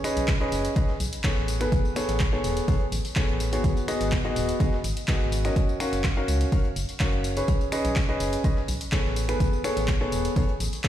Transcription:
0.04 upright piano C#4 G#4 B4 D#5, finger snap, closed hi-hat, open hi-hat, tambourine
0.17 fm bass B1, closed hi-hat, tambourine
0.28 kick, snare, clap, closed hi-hat, tambourine
0.41 upright piano C#4 G#4 B4 D#5, closed hi-hat
0.52 fm bass F#1, closed hi-hat, open hi-hat, tambourine
0.65 closed hi-hat, tambourine
0.76 fm bass B1, upright piano C#4 G#4 B4 D#5, kick, closed hi-hat, tambourine
0.89 snare
1.00 fm bass B1, closed hi-hat, open hi-hat, tambourine
1.13 closed hi-hat, tambourine
1.24 upright piano B3 G#4 A4 C#5, kick, snare, clap, closed hi-hat, tambourine
1.37 fm bass A1, snare
1.48 closed hi-hat, open hi-hat, tambourine
1.61 upright piano B3 G#4 A4 B4, finger snap, closed hi-hat, tambourine
1.72 fm bass A1, kick, closed hi-hat, tambourine
1.85 tambourine
1.96 upright piano B3 G#4 A4 C#5, finger snap, closed hi-hat, open hi-hat, tambourine
2.09 fm bass A1, snare, closed hi-hat, tambourine
2.20 kick, snare, clap, closed hi-hat, tambourine
2.33 upright piano B3 G#4 A4 C#5
2.44 fm bass E1, closed hi-hat, open hi-hat, tambourine
2.57 closed hi-hat, tambourine
2.68 fm bass A1, upright piano B3 G#4 A4 C#5, kick, closed hi-hat, open hi-hat, tambourine
2.81 closed hi-hat
2.92 fm bass A1, closed hi-hat, open hi-hat, tambourine
3.05 open hi-hat, tambourine
3.16 upright piano B3 G#4 A4 C#5, kick, snare, clap, closed hi-hat, tambourine
3.29 fm bass A1, closed hi-hat
3.40 closed hi-hat, open hi-hat, tambourine
3.53 upright piano B3 F#4 G#4 C#5, closed hi-hat, tambourine
3.64 fm bass G#1, kick, closed hi-hat, tambourine
3.77 closed hi-hat, tambourine
3.88 upright piano B3 F#4 G#4 D#5, finger snap, closed hi-hat, open hi-hat, tambourine
4.01 fm bass G#1, closed hi-hat, tambourine
4.12 kick, snare, clap, closed hi-hat, tambourine
4.25 upright piano B3 F#4 G#4 D#5, closed hi-hat
4.36 fm bass D#1, closed hi-hat, open hi-hat, tambourine
4.49 closed hi-hat, tambourine
4.60 fm bass G#1, upright piano B3 F#4 G#4 D#5, kick, closed hi-hat, tambourine
4.73 snare
4.84 fm bass G#1, closed hi-hat, open hi-hat, tambourine
4.97 closed hi-hat, tambourine
5.08 upright piano B3 F#4 G#4 D#5, kick, snare, clap, closed hi-hat, tambourine
5.21 fm bass G#1, snare
5.32 closed hi-hat, open hi-hat, tambourine
5.45 upright piano C#4 F#4 A#4 D#5, finger snap, closed hi-hat, tambourine
5.56 fm bass F#1, kick, closed hi-hat, tambourine
5.69 tambourine
5.80 upright piano C#4 F#4 A#4 F5, finger snap, closed hi-hat, open hi-hat, tambourine
5.93 fm bass F#1, snare, closed hi-hat, tambourine
6.04 kick, snare, clap, closed hi-hat, tambourine
6.17 upright piano C#4 F#4 A#4 F5
6.28 fm bass C#2, closed hi-hat, open hi-hat, tambourine
6.41 closed hi-hat, tambourine
6.52 fm bass F#1, upright piano C#4 F#4 A#4 F5, kick, closed hi-hat, open hi-hat, tambourine
6.65 closed hi-hat
6.76 fm bass F#1, closed hi-hat, open hi-hat, tambourine
6.89 open hi-hat, tambourine
7.00 upright piano C#4 F#4 A#4 F5, kick, snare, clap, closed hi-hat, tambourine
7.13 fm bass F#1, closed hi-hat
7.24 closed hi-hat, open hi-hat, tambourine
7.37 upright piano C#4 G#4 B4 C#5, closed hi-hat, tambourine
7.48 fm bass B1, kick, closed hi-hat, tambourine
7.61 closed hi-hat, tambourine
7.72 upright piano C#4 G#4 B4 D#5, finger snap, closed hi-hat, open hi-hat, tambourine
7.85 fm bass B1, closed hi-hat, tambourine
7.96 kick, snare, clap, closed hi-hat, tambourine
8.09 upright piano C#4 G#4 B4 D#5, closed hi-hat
8.20 fm bass F#1, closed hi-hat, open hi-hat, tambourine
8.33 closed hi-hat, tambourine
8.44 fm bass B1, upright piano C#4 G#4 B4 D#5, kick, closed hi-hat, tambourine
8.57 snare
8.68 fm bass B1, closed hi-hat, open hi-hat, tambourine
8.81 closed hi-hat, tambourine
8.92 upright piano B3 G#4 A4 C#5, kick, snare, clap, closed hi-hat, tambourine
9.05 fm bass A1, snare
9.16 closed hi-hat, open hi-hat, tambourine
9.29 upright piano B3 G#4 A4 B4, finger snap, closed hi-hat, tambourine
9.40 fm bass A1, kick, closed hi-hat, tambourine
9.53 tambourine
9.64 upright piano B3 G#4 A4 C#5, finger snap, closed hi-hat, open hi-hat, tambourine
9.77 fm bass A1, snare, closed hi-hat, tambourine
9.88 kick, snare, clap, closed hi-hat, tambourine
10.01 upright piano B3 G#4 A4 C#5
10.12 fm bass E1, closed hi-hat, open hi-hat, tambourine
10.25 closed hi-hat, tambourine
10.36 fm bass A1, upright piano B3 G#4 A4 C#5, kick, closed hi-hat, open hi-hat, tambourine
10.49 closed hi-hat
10.60 fm bass A1, closed hi-hat, open hi-hat, tambourine
10.73 open hi-hat, tambourine
10.84 upright piano B3 G#4 A4 C#5, kick, snare, clap, closed hi-hat, tambourine

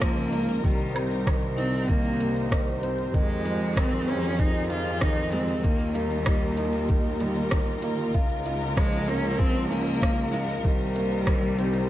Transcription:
Already playing: cello section C#2, string section C#3 A#3 D#4 F4 A#4, felt piano A#3 C#4 F4
0.00 felt piano F3, cello A#3, kick, cross-stick, closed hi-hat
0.17 closed hi-hat
0.33 felt piano A#3, closed hi-hat
0.49 closed hi-hat
0.64 cello section C2, string section C3 G4 C5, felt piano D#3, cello G3, kick, closed hi-hat
0.80 closed hi-hat
0.94 felt piano C4, closed hi-hat, low woodblock
1.11 closed hi-hat
1.26 felt piano D#3, kick, cross-stick, closed hi-hat, low woodblock
1.43 closed hi-hat
1.57 cello C4, felt piano D#4, closed hi-hat
1.74 closed hi-hat
1.88 felt piano D#3, cello A#3, kick, closed hi-hat
2.05 closed hi-hat
2.20 felt piano A#3, closed hi-hat
2.36 closed hi-hat
2.51 felt piano D#3, kick, cross-stick, closed hi-hat
2.68 closed hi-hat
2.83 felt piano C4, closed hi-hat
2.98 closed hi-hat
3.14 cello section F2, felt piano D#3, string section F3 D#4 G#4, cello G#3, kick, closed hi-hat
3.30 closed hi-hat
3.45 felt piano G#3, closed hi-hat
3.61 closed hi-hat
3.76 felt piano D#3, cello C4, kick, cross-stick, closed hi-hat, low woodblock
3.93 closed hi-hat
4.07 felt piano C4, cello C#4, closed hi-hat
4.24 closed hi-hat
4.39 felt piano D#4, cello D#4, kick, closed hi-hat
4.55 closed hi-hat
4.70 felt piano D#4, cello F4, closed hi-hat
4.85 closed hi-hat
5.01 felt piano D#3, cello D#4, kick, cross-stick, closed hi-hat
5.17 closed hi-hat
5.32 felt piano G#3, cello C4, closed hi-hat
5.48 closed hi-hat
5.63 cello section D#2, felt piano D#3, string section D#3 F4 G4 A#4, cello A#3, kick, closed hi-hat
5.80 closed hi-hat
5.95 cello G3, felt piano A#3, closed hi-hat
6.11 closed hi-hat
6.26 felt piano D#4, kick, cross-stick, closed hi-hat, low woodblock
6.42 closed hi-hat
6.57 felt piano D#4, closed hi-hat
6.73 closed hi-hat
6.89 felt piano D#3, kick, closed hi-hat
7.05 closed hi-hat
7.20 felt piano G3, closed hi-hat
7.36 closed hi-hat
7.51 felt piano D#3, kick, cross-stick, closed hi-hat
7.68 closed hi-hat
7.82 felt piano A#3, closed hi-hat
7.98 closed hi-hat
8.14 cello section C#2, string section C#3 A#3, felt piano F4, kick, closed hi-hat
8.30 closed hi-hat
8.46 felt piano F4, closed hi-hat
8.62 closed hi-hat
8.77 felt piano F3, cello G#3, kick, cross-stick, closed hi-hat, low woodblock
8.93 closed hi-hat
9.07 felt piano A#3, cello C#4, closed hi-hat
9.25 closed hi-hat
9.38 felt piano F3, cello C4, kick, closed hi-hat
9.57 closed hi-hat
9.70 cello A#3, felt piano C#4, closed hi-hat
9.87 closed hi-hat
10.02 felt piano F4, kick, cross-stick, closed hi-hat
10.19 closed hi-hat
10.32 cello G#3, felt piano F4, closed hi-hat
10.50 closed hi-hat
10.63 cello section C2, string section C3 G4 C5, felt piano D#3, cello G3, kick, closed hi-hat
10.81 closed hi-hat
10.96 felt piano A#3, closed hi-hat
11.12 closed hi-hat
11.27 felt piano D#3, kick, cross-stick, closed hi-hat, low woodblock
11.43 closed hi-hat
11.59 felt piano C4, closed hi-hat
11.74 closed hi-hat

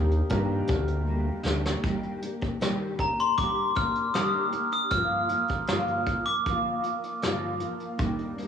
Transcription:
Already playing: analog synth bass D#2, steel-string acoustic guitar A#3 D4 G4, upright piano D4 F4 G4 A#4
0.11 closed hi-hat
0.29 analog synth bass G2, steel-string acoustic guitar D#3 G3 A#3 D4, upright piano D4 F4 G4 A#4, kick, closed hi-hat
0.34 steel-string acoustic guitar G4
0.67 analog synth bass D2, steel-string acoustic guitar D4 G4, kick, closed hi-hat
0.72 steel-string acoustic guitar A#3
0.88 closed hi-hat
1.06 steel-string acoustic guitar G3 A#3 D4
1.11 steel-string acoustic guitar G4
1.45 analog synth bass D2, steel-string acoustic guitar D4 G4, snare
1.50 steel-string acoustic guitar A#3
1.66 snare
1.83 steel-string acoustic guitar D#3 G3 A#3 D4 G4, kick, closed hi-hat
2.03 closed hi-hat
2.21 steel-string acoustic guitar A#3 D4 G4, closed hi-hat
2.41 kick, closed hi-hat
2.60 steel-string acoustic guitar D#3 G3 A#3 D4 G4, snare, closed hi-hat
2.98 steel-string acoustic guitar D4 G4, glockenspiel A#5, kick, closed hi-hat
3.03 steel-string acoustic guitar A#3
3.19 glockenspiel C6, closed hi-hat
3.37 steel-string acoustic guitar G3 A#3 D4 G4, glockenspiel D6, kick, closed hi-hat
3.74 steel-string acoustic guitar A#3 D4 G4, glockenspiel F6, kick, closed hi-hat
3.95 closed hi-hat
4.13 steel-string acoustic guitar D#3 G3 A#3 D4 G4, glockenspiel D#6, snare, closed hi-hat
4.51 steel-string acoustic guitar A#3 D4 G4, closed hi-hat
4.72 glockenspiel D#6, closed hi-hat
4.90 steel-string acoustic guitar G2 D3 F3 A#3 F4, glockenspiel F6, kick, closed hi-hat
5.28 steel-string acoustic guitar F3 A#3 F4, closed hi-hat
5.48 kick, snare, closed hi-hat
5.67 steel-string acoustic guitar G2 D3 F3 A#3 F4, snare, closed hi-hat
5.88 closed hi-hat
6.06 steel-string acoustic guitar F3 A#3 F4, kick, closed hi-hat
6.26 glockenspiel D6, closed hi-hat
6.45 steel-string acoustic guitar D3 F3 A#3, kick, closed hi-hat
6.49 steel-string acoustic guitar F4
6.83 steel-string acoustic guitar F3 A#3 F4, closed hi-hat
7.03 closed hi-hat
7.22 steel-string acoustic guitar G2 D3 F3 A#3 F4, snare, closed hi-hat
7.60 steel-string acoustic guitar F3 A#3 F4, closed hi-hat
7.80 closed hi-hat
7.98 steel-string acoustic guitar D#3 G3 A#3 D4, kick, closed hi-hat
8.19 closed hi-hat
8.36 steel-string acoustic guitar A#3 D4, closed hi-hat
8.40 steel-string acoustic guitar G3

